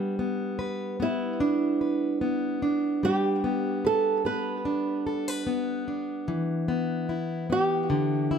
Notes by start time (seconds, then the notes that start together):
Already playing: G3 B3 D4 B4
0.19 B3
0.59 B4
1.00 B3 E4
1.40 D4
1.81 B4
2.21 B3
2.62 D4
3.03 G3 G4
3.44 B3
3.85 A4 B4
4.25 B3 B4
4.65 D4
5.07 A4
5.28 B4
5.47 B3
5.88 D4
6.28 E3
6.68 B3
7.09 E4
7.50 B3 G4
7.90 D3
8.31 E4